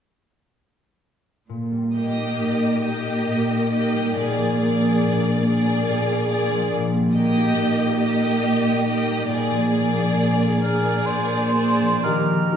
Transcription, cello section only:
0, 0, Header, 1, 2, 480
1, 0, Start_track
1, 0, Key_signature, -3, "major"
1, 0, Tempo, 916031
1, 783, Time_signature, 3, 2, 24, 8
1, 1259, Tempo, 878477
1, 2219, Tempo, 852273
1, 4139, Tempo, 870827
1, 5579, Tempo, 896861
1, 6059, Tempo, 977199
1, 6790, End_track
2, 0, Start_track
2, 0, Title_t, "Cello section"
2, 0, Program_c, 0, 48
2, 782, Note_on_c, 0, 46, 32
2, 1203, Note_off_c, 0, 46, 0
2, 1255, Note_on_c, 0, 46, 29
2, 1680, Note_off_c, 0, 46, 0
2, 1739, Note_on_c, 0, 46, 33
2, 2162, Note_off_c, 0, 46, 0
2, 2219, Note_on_c, 0, 46, 36
2, 2650, Note_off_c, 0, 46, 0
2, 2707, Note_on_c, 0, 46, 34
2, 3130, Note_off_c, 0, 46, 0
2, 3193, Note_on_c, 0, 46, 41
2, 3607, Note_off_c, 0, 46, 0
2, 3662, Note_on_c, 0, 46, 42
2, 4083, Note_off_c, 0, 46, 0
2, 4138, Note_on_c, 0, 46, 37
2, 4558, Note_off_c, 0, 46, 0
2, 4614, Note_on_c, 0, 46, 38
2, 5034, Note_off_c, 0, 46, 0
2, 5093, Note_on_c, 0, 46, 37
2, 5522, Note_off_c, 0, 46, 0
2, 5571, Note_on_c, 0, 46, 34
2, 5997, Note_off_c, 0, 46, 0
2, 6058, Note_on_c, 0, 46, 33
2, 6480, Note_off_c, 0, 46, 0
2, 6790, End_track
0, 0, End_of_file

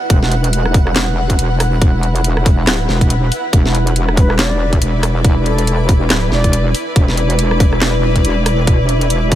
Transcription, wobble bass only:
0, 0, Header, 1, 2, 480
1, 0, Start_track
1, 0, Tempo, 428571
1, 115, Time_signature, 4, 2, 24, 8
1, 10473, End_track
2, 0, Start_track
2, 0, Title_t, "Wobble bass"
2, 0, Program_c, 0, 39
2, 112, Note_on_c, 0, 28, 103
2, 1541, Note_off_c, 0, 28, 0
2, 1552, Note_on_c, 0, 28, 97
2, 2981, Note_off_c, 0, 28, 0
2, 2995, Note_on_c, 0, 26, 87
2, 3219, Note_off_c, 0, 26, 0
2, 3235, Note_on_c, 0, 28, 90
2, 3702, Note_off_c, 0, 28, 0
2, 3954, Note_on_c, 0, 28, 101
2, 5382, Note_off_c, 0, 28, 0
2, 5394, Note_on_c, 0, 28, 101
2, 6822, Note_off_c, 0, 28, 0
2, 6837, Note_on_c, 0, 26, 87
2, 7060, Note_off_c, 0, 26, 0
2, 7072, Note_on_c, 0, 28, 85
2, 7541, Note_off_c, 0, 28, 0
2, 7796, Note_on_c, 0, 28, 99
2, 9223, Note_off_c, 0, 28, 0
2, 9233, Note_on_c, 0, 28, 97
2, 10473, Note_off_c, 0, 28, 0
2, 10473, End_track
0, 0, End_of_file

